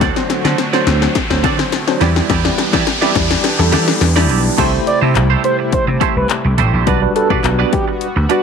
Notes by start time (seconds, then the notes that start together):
Already playing: D3 A3 C4 F#4, riser
0.01 C4 F#4 A4 D5, kick, snare, closed hi-hat
0.16 F#3 D4 C5, muted clean electric guitar stroke, snare
0.29 muted clean electric guitar stroke, snare, closed hi-hat
0.45 D3 C4 F#4 A4 D5, snare
0.58 muted clean electric guitar stroke, snare, closed hi-hat
0.73 F#3 C4 D4 F#4 A4 C5 D5, snare
0.87 D2, snare, closed hi-hat
1.02 muted clean electric guitar stroke, snare
1.15 kick, snare, closed hi-hat
1.30 D2 F#3 D4 C5, muted clean electric guitar stroke, snare
1.43 D3 C4 F#4 A4 D5, kick, snare, closed hi-hat
1.59 muted clean electric guitar stroke, snare
1.72 muted clean electric guitar stroke, snare, closed hi-hat
1.87 F#3 D4 C5, muted clean electric guitar stroke, snare
2.01 E2 E3 G3 B3 D4 E4 G4 D5, snare, closed hi-hat
2.16 B3 E4 G4 D5, snare
2.29 E2 B3 E4 G4 D5, kick, snare, closed hi-hat
2.45 G3 E4 D5, muted clean electric guitar stroke, snare
2.58 muted clean electric guitar stroke, snare, closed hi-hat
2.73 E3 B3 E4 G4 D5, kick, snare, closed hi-hat
2.87 muted clean electric guitar stroke, snare, closed hi-hat
3.01 G3 B3 E4 G4 D5, snare
3.15 E2, muted clean electric guitar stroke, kick, snare, closed hi-hat
3.30 muted clean electric guitar stroke, snare, closed hi-hat
3.44 snare, closed hi-hat
3.59 E2 G3 E4 A4, muted clean electric guitar stroke, snare
3.72 E3 B3 E4 G4 D5, snare, closed hi-hat
3.87 muted clean electric guitar stroke, snare
4.01 E2, muted clean electric guitar stroke, snare, closed hi-hat
4.16 G3 B3 E4 G4 D5, snare
4.29 B1 B3 E4 G4 D5, closed hi-hat
4.45 muted clean electric guitar stroke
4.58 C2 C3 G3 A3 E4 G4 C5, kick, closed hi-hat, crash
4.73 muted clean electric guitar stroke
4.86 D5, muted clean electric guitar stroke, closed hi-hat
5.01 C3 A3 E4 G4 C5
5.15 C2, muted clean electric guitar stroke, clap, closed hi-hat
5.30 A3 E4 G4 C5
5.44 A3 E4 G4 C5, closed hi-hat
5.59 muted clean electric guitar stroke
5.72 C5, muted slap bass stroke, kick, closed hi-hat
5.87 C3, muted clean electric guitar stroke
6.01 A3 E4 G4 C5, kick, closed hi-hat
6.16 C2 B4, muted clean electric guitar stroke
6.30 muted clean electric guitar stroke, clap, closed hi-hat
6.45 C2, muted clean electric guitar stroke
6.58 A1 A3 E4 G4 C5, closed hi-hat
6.73 A#1 A3 E4 G4 C5
6.87 B1 G3 B3 D4 F#4 B4 D5, kick, closed hi-hat
7.02 G3 D4 F#4 B4, muted clean electric guitar stroke
7.15 G3 D4 F#4 A4 B4, muted clean electric guitar stroke, closed hi-hat
7.30 B2 D4 F#4 B4 D5, kick
7.44 B1, muted clean electric guitar stroke, clap, closed hi-hat
7.59 D4 F#4 B4 D5
7.72 G4, muted clean electric guitar stroke, kick, closed hi-hat
7.88 muted clean electric guitar stroke
8.01 closed hi-hat
8.16 D2, muted clean electric guitar stroke
8.29 G3 D4 F#4 B4 D5, closed hi-hat